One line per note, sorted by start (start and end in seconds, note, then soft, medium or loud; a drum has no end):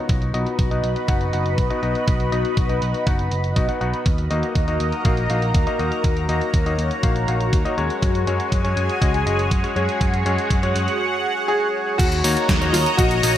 0.00 0.31 B3 medium
0.00 0.31 D#4 medium
0.00 0.31 F#4 medium
0.00 0.31 D#5 loud
0.09 0.31 B1 medium
0.09 4.02 F#4 medium
0.09 4.02 B4 medium
0.09 4.02 D#5 medium
0.09 4.02 B5 medium
0.09 kick loud
0.09 closed hi-hat medium
0.22 closed hi-hat soft
0.34 0.45 B1 medium
0.34 0.68 B3 medium
0.34 0.68 D#4 medium
0.34 0.68 F#4 medium
0.34 0.68 D#5 loud
0.34 closed hi-hat medium
0.47 closed hi-hat soft
0.59 0.80 B1 medium
0.59 kick loud
0.59 closed hi-hat medium
0.71 1.05 B3 medium
0.71 1.05 D#4 medium
0.71 1.05 F#4 medium
0.71 1.05 D#5 medium
0.71 closed hi-hat soft
0.84 0.94 B1 medium
0.84 closed hi-hat medium
0.96 closed hi-hat soft
1.08 1.30 F#1 medium
1.08 1.31 B3 medium
1.08 1.31 D#4 medium
1.08 1.31 F#4 medium
1.08 1.31 F#5 medium
1.08 kick loud
1.08 closed hi-hat medium
1.21 closed hi-hat soft
1.33 1.55 F#1 medium
1.33 1.67 B3 medium
1.33 1.67 D#4 medium
1.33 1.67 F#4 medium
1.33 1.67 F#5 medium
1.33 closed hi-hat medium
1.46 closed hi-hat soft
1.58 1.69 B1 medium
1.58 kick loud
1.58 closed hi-hat medium
1.70 1.80 B3 medium
1.70 1.80 D#4 medium
1.70 1.80 F#4 medium
1.70 1.80 D#5 medium
1.70 closed hi-hat soft
1.83 1.94 B1 medium
1.83 2.29 B3 medium
1.83 2.29 D#4 medium
1.83 2.29 F#4 medium
1.83 2.29 D#5 medium
1.83 closed hi-hat soft
1.95 closed hi-hat soft
2.08 2.29 B1 medium
2.08 kick loud
2.08 closed hi-hat medium
2.20 closed hi-hat soft
2.32 2.43 B1 medium
2.32 2.67 B3 medium
2.32 2.67 D#4 medium
2.32 2.66 F#4 medium
2.32 2.66 D#5 medium
2.32 closed hi-hat medium
2.45 closed hi-hat soft
2.57 2.79 B1 medium
2.57 kick loud
2.57 closed hi-hat medium
2.69 3.04 B3 medium
2.69 3.04 D#4 medium
2.69 3.04 F#4 medium
2.69 3.04 D#5 medium
2.69 closed hi-hat soft
2.82 2.93 B1 medium
2.82 closed hi-hat medium
2.94 closed hi-hat soft
3.06 3.28 F#1 medium
3.06 3.29 B3 medium
3.06 3.29 D#4 medium
3.06 3.29 F#4 medium
3.06 3.29 F#5 medium
3.06 kick loud
3.06 closed hi-hat medium
3.19 closed hi-hat soft
3.31 3.53 F#1 medium
3.31 closed hi-hat medium
3.44 closed hi-hat soft
3.56 3.67 B1 medium
3.56 3.66 B3 medium
3.56 3.66 D#4 medium
3.56 3.66 F#4 medium
3.56 3.66 D#5 medium
3.56 kick loud
3.56 closed hi-hat medium
3.68 3.79 B3 medium
3.68 3.79 D#4 medium
3.68 3.79 F#4 medium
3.68 3.79 F#5 medium
3.68 closed hi-hat soft
3.81 3.92 B1 medium
3.81 4.04 B3 medium
3.81 4.04 D#4 medium
3.81 4.04 F#4 medium
3.81 4.04 F#5 loud
3.81 closed hi-hat soft
3.94 closed hi-hat soft
4.06 4.27 D#2 medium
4.06 11.95 F#4 medium
4.06 7.99 A#4 medium
4.06 6.02 D#5 medium
4.06 7.99 A#5 medium
4.06 kick loud
4.06 closed hi-hat medium
4.18 closed hi-hat soft
4.31 4.41 D#2 medium
4.31 4.65 A#3 medium
4.31 4.65 D#4 medium
4.31 4.65 F#4 medium
4.31 4.65 D#5 loud
4.31 closed hi-hat medium
4.43 closed hi-hat soft
4.55 4.77 D#2 medium
4.55 kick loud
4.55 closed hi-hat medium
4.68 5.02 A#3 medium
4.68 5.02 D#4 medium
4.68 5.02 F#4 medium
4.68 5.02 D#5 medium
4.68 closed hi-hat soft
4.80 4.91 D#2 medium
4.80 closed hi-hat medium
4.92 closed hi-hat soft
5.05 5.27 A#1 medium
5.05 5.27 A#3 medium
5.05 5.27 D#4 medium
5.05 5.27 F#4 medium
5.05 5.27 F5 medium
5.05 kick loud
5.05 closed hi-hat medium
5.17 closed hi-hat soft
5.30 5.51 A#1 medium
5.30 5.64 A#3 medium
5.30 5.64 D#4 medium
5.30 5.64 F#4 medium
5.30 5.64 F5 medium
5.30 closed hi-hat medium
5.42 closed hi-hat soft
5.54 5.65 D#2 medium
5.54 kick loud
5.54 closed hi-hat medium
5.67 5.76 A#3 medium
5.67 5.76 D#4 medium
5.67 5.76 F#4 medium
5.67 5.76 D#5 medium
5.67 closed hi-hat soft
5.79 5.90 D#2 medium
5.79 6.26 A#3 medium
5.79 6.26 D#4 medium
5.79 6.26 F#4 medium
5.79 6.26 D#5 loud
5.79 closed hi-hat soft
5.92 closed hi-hat soft
6.04 6.26 D#2 medium
6.04 11.95 C#5 medium
6.04 kick loud
6.04 closed hi-hat medium
6.17 closed hi-hat soft
6.29 6.40 D#2 medium
6.29 6.63 A#3 medium
6.29 6.63 D#4 medium
6.29 6.63 F#4 medium
6.29 6.63 D#5 loud
6.29 closed hi-hat medium
6.41 closed hi-hat soft
6.54 6.75 D#2 medium
6.54 kick loud
6.54 closed hi-hat medium
6.66 7.00 A#3 medium
6.66 7.00 D#4 medium
6.66 7.00 F#4 medium
6.66 7.00 D#5 medium
6.66 closed hi-hat soft
6.78 6.89 D#2 medium
6.78 closed hi-hat medium
6.91 closed hi-hat soft
7.03 7.25 A#1 medium
7.03 7.26 A#3 medium
7.03 7.26 D#4 medium
7.03 7.26 F#4 medium
7.03 7.26 F5 medium
7.03 kick loud
7.03 closed hi-hat medium
7.16 closed hi-hat soft
7.28 7.50 A#1 medium
7.28 7.62 A#3 medium
7.28 7.62 D#4 medium
7.28 7.62 F#4 medium
7.28 7.62 F5 medium
7.28 closed hi-hat medium
7.41 closed hi-hat soft
7.53 7.64 D#2 medium
7.53 kick loud
7.53 closed hi-hat medium
7.65 7.75 A#3 medium
7.65 7.75 D#4 medium
7.65 7.75 F#4 medium
7.65 7.75 D#5 medium
7.65 closed hi-hat soft
7.78 7.88 D#2 medium
7.78 8.24 G#3 medium
7.78 8.24 C#4 medium
7.78 8.24 F#4 medium
7.78 8.24 C#5 loud
7.78 closed hi-hat soft
7.90 closed hi-hat soft
8.02 8.24 F#2 medium
8.02 11.95 G#4 medium
8.02 9.99 G#5 medium
8.02 kick loud
8.02 closed hi-hat medium
8.15 closed hi-hat soft
8.27 8.38 F#2 medium
8.27 8.62 G#3 medium
8.27 8.62 C#4 medium
8.27 8.62 F#4 medium
8.27 8.62 C#5 loud
8.27 closed hi-hat medium
8.40 closed hi-hat soft
8.52 8.74 F#2 medium
8.52 kick loud
8.52 closed hi-hat medium
8.64 8.99 G#3 medium
8.64 8.99 C#4 medium
8.64 8.99 F#4 medium
8.64 8.99 C#5 medium
8.64 closed hi-hat soft
8.77 8.88 F#2 medium
8.77 closed hi-hat medium
8.89 closed hi-hat soft
9.02 9.23 C#2 medium
9.02 9.24 G#3 medium
9.02 9.24 C#4 medium
9.02 9.24 F#4 medium
9.02 9.24 D#5 medium
9.02 kick loud
9.02 closed hi-hat medium
9.14 closed hi-hat soft
9.26 9.48 F#1 medium
9.26 9.61 G#3 medium
9.26 9.61 C#4 medium
9.26 9.61 F#4 medium
9.26 9.61 D#5 medium
9.26 closed hi-hat medium
9.39 closed hi-hat soft
9.51 9.62 F#2 medium
9.51 kick loud
9.51 closed hi-hat medium
9.64 9.73 G#3 medium
9.64 9.73 C#4 medium
9.64 9.73 F#4 medium
9.64 9.73 C#5 medium
9.64 closed hi-hat soft
9.76 9.87 F#2 medium
9.76 10.23 G#3 medium
9.76 10.23 C#4 medium
9.76 10.23 F#4 medium
9.76 10.23 C#5 loud
9.76 closed hi-hat soft
9.89 closed hi-hat soft
10.01 10.22 F#2 medium
10.01 11.97 F#5 medium
10.01 kick loud
10.01 closed hi-hat medium
10.14 closed hi-hat soft
10.26 10.36 F#2 medium
10.26 10.60 G#3 medium
10.26 10.60 C#4 medium
10.26 10.60 F#4 medium
10.26 10.60 C#5 loud
10.26 closed hi-hat medium
10.38 closed hi-hat soft
10.50 10.72 F#2 medium
10.50 kick loud
10.50 closed hi-hat medium
10.63 10.97 G#3 medium
10.63 10.97 C#4 medium
10.63 10.97 F#4 medium
10.63 10.97 C#5 medium
10.63 closed hi-hat soft
10.75 10.86 F#2 medium
10.75 closed hi-hat medium
10.88 closed hi-hat soft
11.48 12.00 G#4 loud
11.98 12.21 D#2 loud
11.98 12.45 F#4 loud
11.98 13.38 F#4 medium
11.98 13.38 C#5 medium
11.98 13.38 D#5 medium
11.98 13.38 A#5 loud
11.98 kick loud
11.98 closed hi-hat medium
11.98 crash loud
12.12 closed hi-hat soft
12.24 12.35 D#2 medium
12.24 12.58 A#3 loud
12.24 12.58 D#4 medium
12.24 12.58 F#4 medium
12.24 12.58 C#5 loud
12.24 open hi-hat loud
12.37 closed hi-hat soft
12.49 12.70 D#2 medium
12.49 kick loud
12.49 snare loud
12.49 closed hi-hat loud
12.61 12.95 A#3 medium
12.61 12.95 D#4 medium
12.61 12.95 F#4 medium
12.61 12.96 C#5 medium
12.61 closed hi-hat soft
12.72 12.85 D#2 medium
12.72 12.78 F4 medium
12.72 open hi-hat loud
12.86 closed hi-hat soft
12.97 13.20 A#1 medium
12.97 13.21 A#3 medium
12.97 13.21 D#4 medium
12.97 13.38 F#4 loud
12.97 13.21 F#4 medium
12.97 13.21 D#5 medium
12.97 kick loud
12.97 closed hi-hat loud
13.11 closed hi-hat soft
13.23 13.38 A#1 medium
13.23 13.38 A#3 medium
13.23 13.38 D#4 medium
13.23 13.38 F#4 medium
13.23 13.38 D#5 medium
13.23 open hi-hat loud